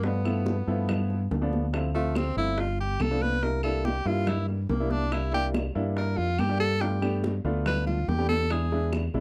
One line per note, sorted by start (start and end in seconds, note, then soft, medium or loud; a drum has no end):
0.00 0.61 G2 medium
0.00 0.19 F3 medium
0.00 high bongo medium
0.00 high conga soft
0.04 0.19 A3 medium
0.04 0.19 B3 medium
0.04 1.32 B3 medium
0.04 0.19 D4 medium
0.25 0.55 F3 medium
0.25 0.55 A3 medium
0.25 0.55 B3 medium
0.25 0.55 E4 medium
0.25 high bongo soft
0.25 high conga soft
0.25 claves medium
0.46 high bongo medium
0.46 high conga medium
0.67 1.27 G2 medium
0.67 1.19 F3 medium
0.67 1.19 A3 medium
0.67 1.19 B3 medium
0.67 1.20 E4 medium
0.67 high conga soft
0.89 high bongo medium
0.89 high conga soft
0.89 low conga medium
0.89 claves medium
1.10 high bongo soft
1.10 high conga soft
1.31 2.31 D2 medium
1.31 high bongo soft
1.31 low bongo medium
1.31 high conga medium
1.42 1.64 F3 medium
1.42 1.64 A3 medium
1.42 1.64 B3 medium
1.42 1.64 D4 loud
1.53 high bongo soft
1.53 high conga medium
1.73 1.88 F3 medium
1.73 1.88 A3 medium
1.73 1.88 C4 medium
1.73 1.88 E4 medium
1.73 high bongo medium
1.73 high conga soft
1.73 claves medium
1.95 2.24 F3 medium
1.95 2.24 A3 medium
1.95 2.19 A3 medium
1.95 2.24 C4 medium
1.95 2.24 F4 medium
1.95 high bongo soft
1.95 high conga soft
2.15 2.37 C4 medium
2.15 high bongo medium
2.15 high conga medium
2.15 claves medium
2.36 2.96 G1 medium
2.36 2.58 F3 medium
2.36 2.58 A3 medium
2.36 2.58 C4 medium
2.36 2.58 E4 medium
2.36 2.62 E4 loud
2.36 high conga soft
2.58 2.80 F4 medium
2.58 high bongo medium
2.58 high conga soft
2.79 3.03 G4 medium
2.79 high bongo soft
2.79 high conga soft
2.99 4.00 C2 medium
2.99 3.24 A4 loud
2.99 high bongo soft
2.99 low bongo medium
2.99 high conga medium
2.99 claves medium
3.11 3.33 F3 medium
3.11 3.33 A3 medium
3.11 3.33 B3 medium
3.11 3.33 D4 medium
3.21 3.45 B4 loud
3.21 high bongo soft
3.21 high conga medium
3.43 3.58 G3 medium
3.43 3.57 A#3 medium
3.43 3.58 D4 soft
3.43 3.58 E4 medium
3.43 3.63 A#4 medium
3.43 high bongo medium
3.43 high conga soft
3.63 3.93 G3 medium
3.63 3.94 A#3 medium
3.63 3.93 D4 medium
3.63 3.94 E4 medium
3.63 3.86 A4 loud
3.63 high bongo soft
3.63 high conga soft
3.63 claves medium
3.85 4.08 G4 medium
3.85 high bongo medium
3.85 high conga medium
4.05 4.65 G2 medium
4.05 4.58 G3 medium
4.05 4.58 A#3 medium
4.05 4.58 D4 medium
4.05 4.58 E4 medium
4.05 4.30 F4 medium
4.05 high conga soft
4.27 4.48 E4 medium
4.27 high bongo medium
4.27 high conga soft
4.27 low conga medium
4.27 claves medium
4.48 4.65 G3 medium
4.48 high bongo soft
4.48 high conga soft
4.69 5.69 C2 medium
4.69 4.93 A#3 medium
4.69 high bongo soft
4.69 low bongo medium
4.69 high conga medium
4.80 5.03 G3 medium
4.80 5.03 A#3 medium
4.80 5.03 D4 medium
4.80 5.03 E4 medium
4.90 5.14 D4 loud
4.90 high bongo soft
4.90 high conga medium
5.12 5.27 G3 medium
5.12 5.27 A#3 medium
5.12 5.27 D4 medium
5.12 5.33 E4 medium
5.12 5.27 E4 medium
5.12 high bongo medium
5.12 high conga soft
5.12 claves medium
5.33 5.63 G3 medium
5.33 5.63 A#3 medium
5.33 5.63 D4 medium
5.33 5.63 E4 medium
5.33 5.47 G4 loud
5.33 high bongo soft
5.33 high conga soft
5.54 high bongo medium
5.54 high conga medium
5.54 claves medium
5.75 6.15 G2 medium
5.75 6.27 G3 medium
5.75 6.27 A#3 medium
5.75 6.27 D4 medium
5.75 6.27 E4 loud
5.75 high conga soft
5.97 6.19 A#4 medium
5.97 high bongo medium
5.97 high conga soft
6.17 6.38 F2 medium
6.17 6.41 F4 loud
6.17 high bongo soft
6.17 high conga soft
6.39 7.39 G2 medium
6.39 6.60 G4 medium
6.39 high bongo soft
6.39 low bongo medium
6.39 high conga medium
6.39 claves medium
6.49 6.72 G3 medium
6.49 6.72 A#3 medium
6.49 6.72 D4 medium
6.49 6.72 G4 medium
6.60 6.83 A4 loud
6.60 high bongo soft
6.81 6.96 A3 medium
6.81 6.96 B3 medium
6.81 6.96 D4 medium
6.81 6.96 F4 medium
6.81 7.24 G4 medium
6.81 high bongo medium
6.81 high conga soft
7.02 7.32 A3 medium
7.02 7.32 B3 medium
7.02 7.32 D4 medium
7.02 7.32 G4 loud
7.02 high bongo soft
7.02 high conga soft
7.02 claves medium
7.24 high bongo medium
7.24 high conga medium
7.44 8.04 D2 medium
7.44 7.97 A3 loud
7.44 7.97 B3 medium
7.44 7.97 D4 medium
7.44 7.97 F4 medium
7.44 high conga soft
7.66 7.86 B4 loud
7.66 high bongo medium
7.66 high conga soft
7.66 low conga medium
7.66 claves medium
7.87 8.10 F4 medium
7.87 high bongo soft
7.87 high conga soft
7.87 low conga medium
8.08 9.08 E2 medium
8.08 8.28 G4 loud
8.08 high bongo soft
8.08 low bongo medium
8.08 high conga medium
8.19 8.41 A3 medium
8.19 8.41 B3 medium
8.19 8.41 D4 medium
8.19 8.41 G4 medium
8.29 8.53 A4 loud
8.29 high bongo soft
8.29 high conga medium
8.50 8.66 G#3 medium
8.50 8.66 B3 medium
8.50 8.66 D4 medium
8.50 8.66 E4 medium
8.50 8.93 G#4 medium
8.50 high bongo medium
8.50 claves medium
8.72 9.02 G#3 medium
8.72 9.02 B3 medium
8.72 9.01 D4 medium
8.72 9.02 E4 medium
8.72 high bongo soft
8.72 high conga soft
8.93 high bongo medium
8.93 high conga medium
8.93 claves medium
9.14 9.20 B1 medium
9.14 9.20 G#3 medium
9.14 9.20 B3 medium
9.14 9.20 D4 medium
9.14 9.20 E4 medium
9.14 high conga soft